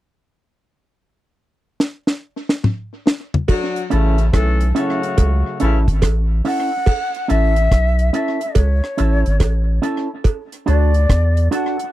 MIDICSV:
0, 0, Header, 1, 7, 480
1, 0, Start_track
1, 0, Key_signature, 3, "major"
1, 0, Tempo, 845189
1, 60, Time_signature, 4, 2, 24, 8
1, 6770, End_track
2, 0, Start_track
2, 0, Title_t, "Flute"
2, 0, Program_c, 0, 73
2, 3673, Note_on_c, 0, 78, 108
2, 4146, Note_on_c, 0, 76, 97
2, 4155, Note_off_c, 0, 78, 0
2, 4620, Note_off_c, 0, 76, 0
2, 4624, Note_on_c, 0, 76, 88
2, 4870, Note_on_c, 0, 73, 81
2, 4878, Note_off_c, 0, 76, 0
2, 5585, Note_off_c, 0, 73, 0
2, 6066, Note_on_c, 0, 74, 95
2, 6521, Note_off_c, 0, 74, 0
2, 6551, Note_on_c, 0, 78, 95
2, 6770, Note_off_c, 0, 78, 0
2, 6770, End_track
3, 0, Start_track
3, 0, Title_t, "Clean electric guitar"
3, 0, Program_c, 1, 27
3, 2216, Note_on_c, 1, 61, 81
3, 2221, Note_on_c, 1, 64, 79
3, 2226, Note_on_c, 1, 69, 88
3, 2358, Note_off_c, 1, 61, 0
3, 2360, Note_off_c, 1, 64, 0
3, 2363, Note_off_c, 1, 69, 0
3, 2696, Note_on_c, 1, 61, 93
3, 2701, Note_on_c, 1, 64, 86
3, 2705, Note_on_c, 1, 69, 86
3, 2838, Note_off_c, 1, 61, 0
3, 2841, Note_off_c, 1, 64, 0
3, 2842, Note_off_c, 1, 69, 0
3, 3180, Note_on_c, 1, 61, 71
3, 3185, Note_on_c, 1, 64, 73
3, 3190, Note_on_c, 1, 69, 79
3, 3320, Note_off_c, 1, 61, 0
3, 3322, Note_off_c, 1, 64, 0
3, 3325, Note_off_c, 1, 69, 0
3, 3661, Note_on_c, 1, 61, 80
3, 3665, Note_on_c, 1, 64, 81
3, 3669, Note_on_c, 1, 69, 83
3, 3801, Note_off_c, 1, 61, 0
3, 3802, Note_off_c, 1, 64, 0
3, 3805, Note_off_c, 1, 69, 0
3, 4136, Note_on_c, 1, 61, 73
3, 4141, Note_on_c, 1, 64, 89
3, 4145, Note_on_c, 1, 69, 95
3, 4278, Note_off_c, 1, 61, 0
3, 4280, Note_off_c, 1, 64, 0
3, 4283, Note_off_c, 1, 69, 0
3, 4617, Note_on_c, 1, 61, 77
3, 4623, Note_on_c, 1, 64, 85
3, 4627, Note_on_c, 1, 69, 91
3, 4759, Note_off_c, 1, 61, 0
3, 4762, Note_off_c, 1, 64, 0
3, 4764, Note_off_c, 1, 69, 0
3, 5097, Note_on_c, 1, 61, 71
3, 5101, Note_on_c, 1, 64, 79
3, 5103, Note_on_c, 1, 69, 86
3, 5238, Note_off_c, 1, 61, 0
3, 5240, Note_off_c, 1, 64, 0
3, 5242, Note_off_c, 1, 69, 0
3, 5576, Note_on_c, 1, 61, 81
3, 5581, Note_on_c, 1, 64, 85
3, 5583, Note_on_c, 1, 69, 96
3, 5718, Note_off_c, 1, 61, 0
3, 5720, Note_off_c, 1, 64, 0
3, 5722, Note_off_c, 1, 69, 0
3, 6054, Note_on_c, 1, 62, 79
3, 6059, Note_on_c, 1, 66, 82
3, 6063, Note_on_c, 1, 69, 88
3, 6197, Note_off_c, 1, 62, 0
3, 6200, Note_off_c, 1, 66, 0
3, 6202, Note_off_c, 1, 69, 0
3, 6537, Note_on_c, 1, 62, 82
3, 6541, Note_on_c, 1, 66, 81
3, 6546, Note_on_c, 1, 69, 96
3, 6678, Note_off_c, 1, 62, 0
3, 6680, Note_off_c, 1, 66, 0
3, 6683, Note_off_c, 1, 69, 0
3, 6770, End_track
4, 0, Start_track
4, 0, Title_t, "Horn section"
4, 0, Program_c, 2, 61
4, 1978, Note_on_c, 2, 54, 96
4, 1979, Note_on_c, 2, 66, 106
4, 1980, Note_on_c, 2, 62, 88
4, 2171, Note_off_c, 2, 54, 0
4, 2172, Note_off_c, 2, 62, 0
4, 2172, Note_off_c, 2, 66, 0
4, 2219, Note_on_c, 2, 49, 81
4, 2219, Note_on_c, 2, 57, 83
4, 2220, Note_on_c, 2, 52, 79
4, 2220, Note_on_c, 2, 64, 86
4, 2411, Note_off_c, 2, 57, 0
4, 2412, Note_off_c, 2, 49, 0
4, 2412, Note_off_c, 2, 52, 0
4, 2412, Note_off_c, 2, 64, 0
4, 2459, Note_on_c, 2, 52, 85
4, 2459, Note_on_c, 2, 57, 86
4, 2459, Note_on_c, 2, 61, 80
4, 2459, Note_on_c, 2, 69, 94
4, 2652, Note_off_c, 2, 52, 0
4, 2652, Note_off_c, 2, 57, 0
4, 2652, Note_off_c, 2, 61, 0
4, 2652, Note_off_c, 2, 69, 0
4, 2698, Note_on_c, 2, 57, 78
4, 2700, Note_on_c, 2, 54, 84
4, 2700, Note_on_c, 2, 66, 92
4, 2701, Note_on_c, 2, 49, 78
4, 3157, Note_off_c, 2, 57, 0
4, 3158, Note_off_c, 2, 49, 0
4, 3158, Note_off_c, 2, 54, 0
4, 3158, Note_off_c, 2, 66, 0
4, 3182, Note_on_c, 2, 49, 76
4, 3182, Note_on_c, 2, 57, 79
4, 3183, Note_on_c, 2, 52, 78
4, 3183, Note_on_c, 2, 64, 85
4, 3274, Note_off_c, 2, 49, 0
4, 3274, Note_off_c, 2, 57, 0
4, 3275, Note_off_c, 2, 52, 0
4, 3275, Note_off_c, 2, 64, 0
4, 6770, End_track
5, 0, Start_track
5, 0, Title_t, "Sub bass"
5, 0, Program_c, 3, 38
5, 2231, Note_on_c, 3, 33, 107
5, 2448, Note_off_c, 3, 33, 0
5, 2466, Note_on_c, 3, 35, 91
5, 2685, Note_off_c, 3, 35, 0
5, 2947, Note_on_c, 3, 37, 92
5, 3087, Note_off_c, 3, 37, 0
5, 3192, Note_on_c, 3, 33, 94
5, 3330, Note_off_c, 3, 33, 0
5, 3342, Note_on_c, 3, 32, 89
5, 3418, Note_off_c, 3, 32, 0
5, 3426, Note_on_c, 3, 33, 93
5, 3645, Note_off_c, 3, 33, 0
5, 4149, Note_on_c, 3, 33, 100
5, 4367, Note_off_c, 3, 33, 0
5, 4384, Note_on_c, 3, 35, 96
5, 4604, Note_off_c, 3, 35, 0
5, 4865, Note_on_c, 3, 37, 96
5, 5006, Note_off_c, 3, 37, 0
5, 5110, Note_on_c, 3, 33, 91
5, 5248, Note_off_c, 3, 33, 0
5, 5263, Note_on_c, 3, 32, 88
5, 5338, Note_off_c, 3, 32, 0
5, 5345, Note_on_c, 3, 33, 95
5, 5565, Note_off_c, 3, 33, 0
5, 6066, Note_on_c, 3, 38, 103
5, 6285, Note_off_c, 3, 38, 0
5, 6305, Note_on_c, 3, 40, 86
5, 6525, Note_off_c, 3, 40, 0
5, 6770, End_track
6, 0, Start_track
6, 0, Title_t, "Muted clean electric guitar strokes"
6, 2853, Note_on_c, 9, 29, 40
6, 2910, Note_off_c, 9, 29, 0
6, 4775, Note_on_c, 9, 29, 41
6, 4832, Note_off_c, 9, 29, 0
6, 6692, Note_on_c, 9, 29, 45
6, 6748, Note_off_c, 9, 29, 0
6, 6770, End_track
7, 0, Start_track
7, 0, Title_t, "Drums"
7, 1022, Note_on_c, 9, 38, 55
7, 1079, Note_off_c, 9, 38, 0
7, 1177, Note_on_c, 9, 38, 57
7, 1233, Note_off_c, 9, 38, 0
7, 1416, Note_on_c, 9, 38, 58
7, 1473, Note_off_c, 9, 38, 0
7, 1500, Note_on_c, 9, 45, 82
7, 1557, Note_off_c, 9, 45, 0
7, 1744, Note_on_c, 9, 38, 83
7, 1800, Note_off_c, 9, 38, 0
7, 1898, Note_on_c, 9, 43, 86
7, 1955, Note_off_c, 9, 43, 0
7, 1978, Note_on_c, 9, 56, 75
7, 1982, Note_on_c, 9, 36, 108
7, 1983, Note_on_c, 9, 49, 79
7, 2035, Note_off_c, 9, 56, 0
7, 2039, Note_off_c, 9, 36, 0
7, 2040, Note_off_c, 9, 49, 0
7, 2136, Note_on_c, 9, 42, 52
7, 2193, Note_off_c, 9, 42, 0
7, 2222, Note_on_c, 9, 42, 56
7, 2278, Note_off_c, 9, 42, 0
7, 2375, Note_on_c, 9, 42, 50
7, 2432, Note_off_c, 9, 42, 0
7, 2462, Note_on_c, 9, 36, 99
7, 2462, Note_on_c, 9, 56, 71
7, 2463, Note_on_c, 9, 37, 91
7, 2465, Note_on_c, 9, 42, 74
7, 2519, Note_off_c, 9, 36, 0
7, 2519, Note_off_c, 9, 56, 0
7, 2520, Note_off_c, 9, 37, 0
7, 2522, Note_off_c, 9, 42, 0
7, 2616, Note_on_c, 9, 42, 53
7, 2673, Note_off_c, 9, 42, 0
7, 2703, Note_on_c, 9, 42, 73
7, 2760, Note_off_c, 9, 42, 0
7, 2859, Note_on_c, 9, 42, 47
7, 2915, Note_off_c, 9, 42, 0
7, 2940, Note_on_c, 9, 42, 89
7, 2940, Note_on_c, 9, 56, 73
7, 2943, Note_on_c, 9, 36, 112
7, 2997, Note_off_c, 9, 42, 0
7, 2997, Note_off_c, 9, 56, 0
7, 3000, Note_off_c, 9, 36, 0
7, 3180, Note_on_c, 9, 42, 60
7, 3236, Note_off_c, 9, 42, 0
7, 3338, Note_on_c, 9, 36, 79
7, 3340, Note_on_c, 9, 42, 44
7, 3395, Note_off_c, 9, 36, 0
7, 3397, Note_off_c, 9, 42, 0
7, 3419, Note_on_c, 9, 56, 77
7, 3421, Note_on_c, 9, 42, 83
7, 3422, Note_on_c, 9, 36, 101
7, 3426, Note_on_c, 9, 37, 93
7, 3475, Note_off_c, 9, 56, 0
7, 3478, Note_off_c, 9, 42, 0
7, 3479, Note_off_c, 9, 36, 0
7, 3483, Note_off_c, 9, 37, 0
7, 3663, Note_on_c, 9, 46, 74
7, 3720, Note_off_c, 9, 46, 0
7, 3898, Note_on_c, 9, 56, 76
7, 3902, Note_on_c, 9, 36, 109
7, 3902, Note_on_c, 9, 49, 85
7, 3955, Note_off_c, 9, 56, 0
7, 3959, Note_off_c, 9, 36, 0
7, 3959, Note_off_c, 9, 49, 0
7, 4058, Note_on_c, 9, 42, 52
7, 4115, Note_off_c, 9, 42, 0
7, 4144, Note_on_c, 9, 42, 57
7, 4201, Note_off_c, 9, 42, 0
7, 4295, Note_on_c, 9, 42, 50
7, 4352, Note_off_c, 9, 42, 0
7, 4382, Note_on_c, 9, 36, 97
7, 4383, Note_on_c, 9, 37, 88
7, 4386, Note_on_c, 9, 42, 71
7, 4438, Note_off_c, 9, 36, 0
7, 4440, Note_off_c, 9, 37, 0
7, 4443, Note_off_c, 9, 42, 0
7, 4536, Note_on_c, 9, 42, 50
7, 4593, Note_off_c, 9, 42, 0
7, 4622, Note_on_c, 9, 42, 70
7, 4679, Note_off_c, 9, 42, 0
7, 4776, Note_on_c, 9, 42, 48
7, 4832, Note_off_c, 9, 42, 0
7, 4856, Note_on_c, 9, 56, 77
7, 4858, Note_on_c, 9, 42, 84
7, 4861, Note_on_c, 9, 36, 112
7, 4913, Note_off_c, 9, 56, 0
7, 4914, Note_off_c, 9, 42, 0
7, 4918, Note_off_c, 9, 36, 0
7, 5019, Note_on_c, 9, 37, 65
7, 5076, Note_off_c, 9, 37, 0
7, 5100, Note_on_c, 9, 42, 60
7, 5157, Note_off_c, 9, 42, 0
7, 5258, Note_on_c, 9, 42, 46
7, 5315, Note_off_c, 9, 42, 0
7, 5339, Note_on_c, 9, 42, 79
7, 5339, Note_on_c, 9, 56, 69
7, 5341, Note_on_c, 9, 36, 107
7, 5344, Note_on_c, 9, 37, 92
7, 5395, Note_off_c, 9, 42, 0
7, 5396, Note_off_c, 9, 56, 0
7, 5398, Note_off_c, 9, 36, 0
7, 5400, Note_off_c, 9, 37, 0
7, 5585, Note_on_c, 9, 42, 73
7, 5642, Note_off_c, 9, 42, 0
7, 5817, Note_on_c, 9, 56, 73
7, 5821, Note_on_c, 9, 36, 114
7, 5821, Note_on_c, 9, 42, 65
7, 5874, Note_off_c, 9, 56, 0
7, 5877, Note_off_c, 9, 42, 0
7, 5878, Note_off_c, 9, 36, 0
7, 5977, Note_on_c, 9, 42, 54
7, 6033, Note_off_c, 9, 42, 0
7, 6063, Note_on_c, 9, 42, 55
7, 6120, Note_off_c, 9, 42, 0
7, 6215, Note_on_c, 9, 42, 50
7, 6272, Note_off_c, 9, 42, 0
7, 6301, Note_on_c, 9, 36, 100
7, 6303, Note_on_c, 9, 37, 91
7, 6305, Note_on_c, 9, 42, 73
7, 6358, Note_off_c, 9, 36, 0
7, 6360, Note_off_c, 9, 37, 0
7, 6362, Note_off_c, 9, 42, 0
7, 6457, Note_on_c, 9, 42, 52
7, 6514, Note_off_c, 9, 42, 0
7, 6544, Note_on_c, 9, 42, 70
7, 6601, Note_off_c, 9, 42, 0
7, 6698, Note_on_c, 9, 42, 49
7, 6755, Note_off_c, 9, 42, 0
7, 6770, End_track
0, 0, End_of_file